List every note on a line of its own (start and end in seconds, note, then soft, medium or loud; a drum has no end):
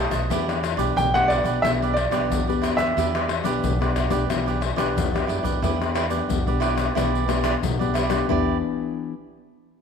0.00 0.28 B2 medium
0.00 0.26 A3 medium
0.00 0.26 D#4 medium
0.00 0.12 G4 medium
0.00 0.26 G4 medium
0.00 0.12 B4 medium
0.00 0.12 D#5 medium
0.00 0.10 A5 medium
0.11 0.27 B1 medium
0.11 0.29 B4 soft
0.11 0.29 D#5 soft
0.11 0.28 A5 soft
0.11 pandeiro medium
0.11 tamborim medium
0.11 shaker medium
0.30 0.73 E2 loud
0.30 0.94 E3 medium
0.30 0.62 B3 medium
0.30 0.62 D4 medium
0.30 0.46 E4 medium
0.30 0.47 G4 medium
0.30 0.63 G4 medium
0.30 0.47 B4 medium
0.30 0.47 D5 medium
0.30 pandeiro medium
0.30 shaker medium
0.30 surdo medium
0.48 0.63 G4 soft
0.48 0.63 B4 soft
0.48 0.63 D5 soft
0.48 pandeiro soft
0.48 tamborim medium
0.48 shaker soft
0.63 muted cavaquinho stroke soft
0.63 pandeiro medium
0.63 tamborim medium
0.63 shaker medium
0.77 0.93 B1 medium
0.77 1.08 B3 medium
0.77 1.08 D4 medium
0.77 1.08 G4 medium
0.77 1.12 G4 medium
0.77 1.12 B4 medium
0.77 1.11 D5 medium
0.77 pandeiro medium
0.77 shaker medium
0.96 1.39 B1 loud
0.96 1.61 B2 medium
0.96 1.13 G5 loud
0.96 pandeiro medium
0.96 shaker medium
0.96 surdo loud
1.14 1.59 B3 medium
1.14 1.59 D4 medium
1.14 1.60 G4 medium
1.14 1.30 G4 soft
1.14 1.30 B4 soft
1.14 1.30 D5 medium
1.14 1.31 F#5 loud
1.14 pandeiro soft
1.14 tamborim medium
1.14 shaker soft
1.28 1.46 E4 medium
1.28 1.46 G4 medium
1.28 1.45 B4 medium
1.28 1.60 D5 loud
1.28 pandeiro medium
1.28 tamborim medium
1.28 surdo medium
1.32 1.43 D5 medium
1.44 1.59 B1 medium
1.44 1.63 G4 medium
1.44 1.62 B4 medium
1.44 1.61 D5 medium
1.44 pandeiro medium
1.44 shaker medium
1.62 2.06 B1 loud
1.62 2.27 E3 medium
1.62 1.95 B3 medium
1.62 1.95 D4 medium
1.62 1.80 E4 medium
1.62 1.96 G4 medium
1.62 1.80 G4 medium
1.62 1.70 E5 loud
1.62 pandeiro medium
1.62 tamborim medium
1.62 shaker medium
1.62 surdo medium
1.67 1.81 B4 medium
1.67 1.81 D5 medium
1.82 1.96 G4 medium
1.82 1.96 B4 medium
1.82 1.96 D5 medium
1.82 pandeiro soft
1.82 shaker soft
1.94 2.81 D5 medium
1.94 muted cavaquinho stroke soft
1.94 pandeiro medium
1.94 tamborim medium
2.11 2.27 B1 medium
2.11 2.41 B3 medium
2.11 2.41 D4 medium
2.11 2.41 G4 medium
2.11 2.46 G4 medium
2.11 2.45 B4 medium
2.11 2.45 D5 medium
2.11 pandeiro medium
2.11 tamborim medium
2.11 shaker medium
2.30 2.73 E2 medium
2.30 2.94 B2 medium
2.30 pandeiro medium
2.30 shaker medium
2.30 surdo loud
2.47 2.93 B3 medium
2.47 2.93 D4 soft
2.47 2.93 G4 medium
2.47 2.61 G4 soft
2.47 2.62 B4 soft
2.47 2.63 D5 soft
2.47 pandeiro soft
2.47 shaker soft
2.62 2.78 E4 medium
2.62 2.78 G4 medium
2.62 2.77 B4 medium
2.62 2.76 D5 medium
2.62 pandeiro medium
2.62 tamborim medium
2.62 shaker medium
2.77 2.93 E2 medium
2.77 2.96 G4 soft
2.77 2.95 B4 soft
2.77 2.94 D5 soft
2.77 4.91 E5 medium
2.77 pandeiro medium
2.77 tamborim medium
2.77 shaker medium
2.96 3.39 E2 medium
2.96 3.60 E3 medium
2.96 3.28 B3 medium
2.96 3.28 D4 medium
2.96 3.12 E4 medium
2.96 3.29 G4 medium
2.96 3.13 G4 medium
2.96 3.13 B4 medium
2.96 3.14 D5 medium
2.96 pandeiro medium
2.96 shaker medium
2.96 surdo medium
3.15 3.28 G4 soft
3.15 3.28 B4 soft
3.15 3.28 D5 medium
3.15 pandeiro soft
3.15 tamborim medium
3.15 shaker soft
3.29 muted cavaquinho stroke soft
3.29 pandeiro medium
3.29 tamborim medium
3.44 3.60 B1 medium
3.44 3.73 B3 medium
3.44 3.74 D4 medium
3.44 3.74 G4 medium
3.44 3.79 G4 medium
3.44 3.78 B4 medium
3.44 3.77 D5 medium
3.44 pandeiro medium
3.44 shaker medium
3.64 4.06 B1 loud
3.64 4.27 B2 medium
3.64 pandeiro medium
3.64 shaker medium
3.64 surdo loud
3.80 4.08 B3 medium
3.80 4.09 D4 medium
3.80 4.09 G4 medium
3.80 3.96 G4 soft
3.80 3.96 B4 soft
3.80 3.96 D5 medium
3.80 pandeiro soft
3.80 tamborim medium
3.80 shaker soft
3.96 4.12 E4 medium
3.96 4.12 G4 medium
3.96 4.11 B4 soft
3.96 4.09 D5 medium
3.96 pandeiro medium
3.96 tamborim medium
3.96 shaker medium
3.96 surdo medium
4.10 4.26 B1 loud
4.10 4.23 B3 medium
4.10 4.23 D4 medium
4.10 4.24 G4 medium
4.10 4.29 G4 medium
4.10 4.28 B4 medium
4.10 4.27 D5 medium
4.10 pandeiro medium
4.10 shaker medium
4.29 4.72 B1 loud
4.29 4.94 E3 medium
4.29 4.61 B3 medium
4.29 4.62 D4 medium
4.29 4.45 E4 soft
4.29 4.46 G4 soft
4.29 4.62 G4 medium
4.29 4.46 B4 medium
4.29 4.45 D5 medium
4.29 pandeiro medium
4.29 tamborim medium
4.29 shaker medium
4.29 surdo medium
4.46 4.60 G4 medium
4.46 4.61 B4 medium
4.46 4.61 D5 medium
4.46 pandeiro soft
4.46 shaker soft
4.61 muted cavaquinho stroke soft
4.61 pandeiro medium
4.61 tamborim medium
4.76 4.93 B1 medium
4.76 5.07 B3 medium
4.76 5.07 D4 medium
4.76 5.07 G4 medium
4.76 5.11 G4 soft
4.76 5.11 B4 medium
4.76 5.10 D5 medium
4.76 pandeiro medium
4.76 tamborim medium
4.76 shaker medium
4.96 5.25 E2 medium
4.96 5.60 B2 medium
4.96 pandeiro medium
4.96 shaker medium
4.96 surdo loud
5.14 5.58 B3 medium
5.14 5.58 D4 medium
5.14 5.59 G4 medium
5.14 5.27 G4 soft
5.14 5.28 B4 soft
5.14 5.29 D5 soft
5.14 pandeiro soft
5.14 tamborim medium
5.14 shaker soft
5.27 5.42 F#2 medium
5.27 5.44 E4 medium
5.27 5.44 G4 medium
5.27 5.43 B4 medium
5.27 5.42 D5 medium
5.27 pandeiro medium
5.43 5.60 E2 medium
5.43 5.61 G4 soft
5.43 5.61 B4 soft
5.43 5.60 D5 medium
5.43 pandeiro medium
5.43 shaker medium
5.43 surdo medium
5.62 6.19 E2 loud
5.62 6.27 E3 medium
5.62 6.08 B3 medium
5.62 6.08 D4 medium
5.62 5.94 E4 medium
5.62 5.94 G4 medium
5.62 6.08 G4 medium
5.62 5.95 B4 medium
5.62 5.95 D5 medium
5.62 pandeiro medium
5.62 shaker medium
5.62 surdo medium
5.81 pandeiro soft
5.81 tamborim medium
5.81 shaker soft
5.95 6.05 E4 medium
5.95 6.05 G4 medium
5.95 6.05 B4 medium
5.95 6.06 D5 medium
5.95 pandeiro medium
5.95 tamborim medium
6.10 6.40 B3 medium
6.10 6.40 D4 medium
6.10 6.40 G4 medium
6.10 6.45 G4 soft
6.10 6.44 B4 soft
6.10 6.44 D5 soft
6.10 pandeiro medium
6.10 shaker medium
6.29 6.43 E2 medium
6.29 6.93 B2 medium
6.29 pandeiro medium
6.29 shaker medium
6.29 surdo loud
6.46 6.89 B1 medium
6.46 6.92 B3 medium
6.46 6.92 D4 medium
6.46 6.92 G4 medium
6.46 6.60 G4 soft
6.46 6.60 B4 soft
6.46 6.61 D5 soft
6.46 pandeiro soft
6.46 shaker soft
6.60 6.77 E4 medium
6.60 6.77 G4 medium
6.60 6.76 B4 medium
6.60 6.74 D5 medium
6.60 pandeiro medium
6.60 tamborim medium
6.75 6.94 G4 soft
6.75 6.94 B4 soft
6.75 6.93 D5 soft
6.75 pandeiro medium
6.75 tamborim medium
6.75 shaker medium
6.95 7.53 B1 loud
6.95 7.59 E3 medium
6.95 7.24 B3 medium
6.95 7.24 D4 medium
6.95 7.27 E4 medium
6.95 7.27 G4 medium
6.95 7.25 G4 medium
6.95 7.28 B4 medium
6.95 7.29 D5 medium
6.95 pandeiro medium
6.95 tamborim medium
6.95 shaker medium
6.95 surdo medium
7.15 pandeiro soft
7.15 shaker soft
7.28 7.60 B3 medium
7.28 7.60 D4 medium
7.28 7.42 E4 medium
7.28 7.43 G4 medium
7.28 7.61 G4 medium
7.28 7.43 B4 medium
7.28 7.44 D5 medium
7.28 pandeiro medium
7.28 tamborim medium
7.28 shaker medium
7.44 7.54 E4 medium
7.44 7.54 G4 medium
7.44 7.54 B4 medium
7.44 7.55 D5 medium
7.44 pandeiro medium
7.44 tamborim medium
7.44 shaker medium
7.63 8.19 B1 loud
7.63 8.26 B2 medium
7.63 pandeiro medium
7.63 shaker medium
7.63 surdo loud
7.79 8.08 B3 medium
7.79 8.08 D4 medium
7.79 8.08 G4 medium
7.79 7.93 G4 soft
7.79 7.94 B4 medium
7.79 7.95 D5 medium
7.79 pandeiro soft
7.79 shaker soft
7.94 8.10 E4 medium
7.94 8.10 G4 medium
7.94 8.09 B4 medium
7.94 8.08 D5 medium
7.94 pandeiro medium
7.94 tamborim medium
7.94 shaker medium
8.09 8.28 B3 medium
8.09 8.28 D4 medium
8.09 8.29 G4 medium
8.09 8.28 G4 soft
8.09 8.27 B4 medium
8.09 8.26 D5 medium
8.09 pandeiro medium
8.09 tamborim medium
8.09 shaker medium
8.28 8.61 E2 medium
8.28 9.13 E3 medium
8.28 9.13 B3 medium
8.28 9.13 D4 medium
8.28 8.56 E4 medium
8.28 9.13 G4 medium
8.28 8.56 G4 medium
8.28 8.57 B4 medium
8.28 8.57 D5 medium
8.28 surdo medium